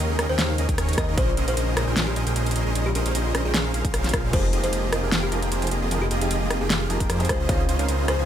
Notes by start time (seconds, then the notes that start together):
Already playing: C#3 G#3 A#3 D#4
0.00 D#2 C#4 D#4 G#4 A#4 D#5
0.19 D#2 C#4 D#4 G#4 A#4 D#5, cross-stick, closed hi-hat
0.29 D#2 C#4 D#4 G#4 A#4 C5 G5
0.39 D#2 C#4 D#4 G#4 A#4 F5, snare, closed hi-hat
0.58 D#2 C#4 D#4 G#4 A#4 D#5, closed hi-hat
0.69 D#2 C#4 D#4 G#4 A#4 G5, kick, closed hi-hat
0.78 D#2 C#4 D#4 G#4 A#4 C#5, cross-stick, closed hi-hat
0.89 closed hi-hat
0.93 closed hi-hat
0.98 D#2 C#4 D#4 G#4 A#4 D#5, kick, cross-stick, closed hi-hat
1.08 D#2 C#4 D#4 G#4 A#4 D#5
1.18 A#1 C4 C#4 D#4 G#4 A#4 C5 D#5, kick, closed hi-hat
1.37 A#1 C#4 G#4 A#4 C5 D#5, closed hi-hat
1.48 A#1 C#4 G#4 A#4 C5 F5, closed hi-hat
1.57 A#1 C#4 G#4 A#4 C5 D#5, closed hi-hat
1.77 A#1 C#4 G#4 A#4 C5 D#5, cross-stick, closed hi-hat
1.87 A#1 C#4 G#4 A#4 C5 G5
1.97 A#1 C#4 G#4 A#4 C5 F5, snare, closed hi-hat
2.07 G4
2.16 A#1 C#4 G#4 A#4 C5 D#5, closed hi-hat
2.27 A#1 C#4 G#4 A#4 C5 G5, closed hi-hat
2.36 A#1 C#4 G#4 A#4 C5 D#5, closed hi-hat
2.46 closed hi-hat
2.51 closed hi-hat
2.56 A#1 C#4 G#4 A#4 C5 D#5, closed hi-hat
2.66 A#1 C#4 G#4 A#4 C5 D#5
2.75 A#1 C#4 G#4 A#4 C5 D#5, closed hi-hat
2.86 G4
2.95 A#1 C#4 G#4 A#4 C5 D#5, closed hi-hat
3.06 A#1 C#4 G#4 A#4 C5 F5, closed hi-hat
3.15 A#1 C#4 G#4 A#4 C5 D#5, closed hi-hat
3.35 A#1 C#4 G#4 A#4 C5 D#5, cross-stick, closed hi-hat
3.45 A#1 C#4 G#4 A#4 C5 G5
3.54 A#1 C#4 G#4 A#4 C5 F5, snare, closed hi-hat
3.74 A#1 C#4 G#4 A#4 C5 F5, closed hi-hat
3.85 A#1 C#4 G#4 A#4 C5 F5, kick, closed hi-hat
3.94 A#1 C#4 G#4 A#4 C5 F5, cross-stick, closed hi-hat
4.04 snare, closed hi-hat
4.09 closed hi-hat
4.14 A#1 C#4 F4 G#4 A#4 C5 F5, kick, cross-stick, closed hi-hat
4.24 A#1 C#4 G#4 A#4 C5 F5
4.32 F1 D#3 F3 A#3 D#4 F4 G4 G#4 A#4 C5 D#5 G5, kick, closed hi-hat, crash
4.53 F1 A#3 F4 G4 G#4 D#5, closed hi-hat
4.63 F1 F3 A#3 D#4 F4 G4 G#4 C5 D#5 F5, closed hi-hat
4.73 F1 A#3 F4 G4 G#4 D#5, closed hi-hat
4.92 F1 A#3 F4 G4 G#4 A#4 D#5, cross-stick, closed hi-hat
5.02 F1 F3 A#3 D#4 F4 G4 G#4 A#4 G5
5.12 F1 A#3 F4 G4 G#4 F5, snare, closed hi-hat
5.23 G4
5.31 F1 F3 A#3 D#4 F4 G4 G#4 A#4 D#5, closed hi-hat
5.42 F1 A#3 F4 G4 G#4 G5, closed hi-hat
5.52 F1 A#3 F4 G4 G#4 C5, closed hi-hat
5.61 F3 D#4 G4 G#4 C5, closed hi-hat
5.67 closed hi-hat
5.71 F1 A#3 F4 G4 G#4 D#5, closed hi-hat
5.82 F1 A#3 F4 G4 G#4 D#5
5.90 F1 F3 A#3 D#4 F4 G4 G#4 A#4 D#5, closed hi-hat
6.02 G4
6.11 F1 A#3 F4 G4 G#4 D#5, closed hi-hat
6.20 F1 F3 A#3 D#4 F4 G4 G#4 D#5 F5, closed hi-hat
6.31 F1 A#3 F4 G4 G#4 D#5, closed hi-hat
6.50 F1 A#3 F4 G4 G#4 D#5, cross-stick, closed hi-hat
6.60 F1 F3 A#3 D#4 F4 G4 G#4 A#4 G5
6.70 F1 A#3 F4 G4 G#4 F5, snare, closed hi-hat
6.89 F1 F3 A#3 D#4 F4 G4 G#4 A#4 D#5, closed hi-hat
7.00 F1 A#3 F4 G4 G#4 G5, kick, closed hi-hat
7.10 F2 A#3 F4 G4 G#4 C5, cross-stick, closed hi-hat
7.19 F3 D#4 G4 G#4 C5, closed hi-hat
7.25 closed hi-hat
7.29 C#2 C#3 F3 C4 C#4 D#4 F4 G#4 C5 D#5, kick, cross-stick, closed hi-hat
7.40 C#2 C#4 F4 G#4 C5 D#5
7.48 C#2 C#3 C4 C#4 D#4 F4 G#4 C5 C#5 D#5, kick, closed hi-hat
7.69 C#2 C#4 F4 G#4 C5 D#5, closed hi-hat
7.78 C#2 C#3 C4 C#4 D#4 F4 G#4 A#4 C5 C#5 F5, closed hi-hat
7.89 C#2 C#4 F4 G#4 C5 D#5, closed hi-hat
8.08 C#2 C#4 F4 G#4 C5 D#5, cross-stick, closed hi-hat
8.18 C#2 C#3 C4 C#4 D#4 F4 G#4 C5 G#5